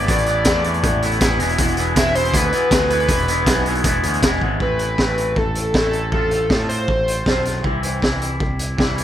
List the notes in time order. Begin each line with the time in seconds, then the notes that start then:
Already playing: D5
0.06 A1 A2 E3 A3 B3 E4, kick, closed hi-hat
0.18 closed hi-hat
0.26 A2 E3 A3 B3 E4, closed hi-hat
0.44 E2 A2 E3 A3 B3 E4, kick, snare, closed hi-hat
0.64 A2 E3 A3 B3 E4, closed hi-hat
0.74 closed hi-hat
0.83 A1 A2 E3 A3 B3 E4, kick, closed hi-hat
1.02 A2 E3 A3 B3 E4, closed hi-hat
1.11 closed hi-hat
1.20 A1 A2 E3 A3 B3 E4, kick, snare, closed hi-hat
1.38 E1 E2 B2 E3 G#3 B3 E4, closed hi-hat
1.49 closed hi-hat
1.58 E2 B2 E3 G#3 B3 E4, kick, closed hi-hat
1.68 closed hi-hat
1.76 E2 B2 E3 G#3 B3 E4, closed hi-hat
1.94 E1 E2 B2 E3 G#3 B3 E4, kick, snare, closed hi-hat
1.98 E5
2.13 E2 B2 E3 G#3 B3 E4 C5, closed hi-hat
2.25 closed hi-hat
2.32 D2 E2 B2 E3 G#3 B3 E4 B4, kick, closed hi-hat
2.51 E2 B2 E3 G#3 B3 E4, closed hi-hat
2.71 D2 E2 B2 E3 G#3 B3 E4, kick, snare, closed hi-hat
2.90 E2 B2 E3 G#3 B3 E4 B4, closed hi-hat
3.00 closed hi-hat
3.09 E1 E2 B2 E3 G#3 B3 E4, kick, closed hi-hat
3.26 E2 B2 E3 G#3 B3 E4, closed hi-hat
3.46 B1 E2 B2 E3 G#3 B3 E4, kick, snare, closed hi-hat
3.65 E2 B2 E3 G#3 B3 E4, closed hi-hat
3.75 closed hi-hat
3.84 E1 E2 B2 E3 G#3 B3 E4, kick, closed hi-hat
4.03 D2 E2 B2 E3 G#3 B3 E4, closed hi-hat
4.13 closed hi-hat
4.22 E1 E2 B2 E3 G#3 B3 E4, kick, snare, closed hi-hat
4.41 G#1 E2 B2 E3 G#3 B3 E4, kick
4.60 A1 A2 E3 A3 C4 E4 B4, kick
4.79 A3 C4 E4, closed hi-hat
4.98 A1 E3 A3 C4 E4, kick, snare
5.17 A3 C4 E4, closed hi-hat
5.36 A1 A4, kick
5.55 closed hi-hat
5.73 A1 A2 E3 A3 C4 E4 A4, kick, snare
5.92 A3 C4 E4, closed hi-hat
6.11 A1 A2 F3 A3 C4 F4 A4, kick
6.31 A3 C4 F4, closed hi-hat
6.49 A2 F3 A3 C4 F4, kick, snare
6.68 A3 C4 F4 C5, closed hi-hat
6.88 A1, kick
7.08 closed hi-hat
7.26 B1 A2 F3 A3 C4 F4, kick, snare
7.44 A3 C4 F4, snare, closed hi-hat
7.63 C2 C3 E3 G3 C4 E4, kick
7.82 G3 C4 E4, closed hi-hat
8.01 C2 E3 G3 C4 E4, kick, snare
8.20 G3 C4 E4, closed hi-hat
8.40 C2, kick
8.59 closed hi-hat
8.77 C2 C3 E3 G3 C4 E4, kick, snare
8.97 G3 C4 E4, closed hi-hat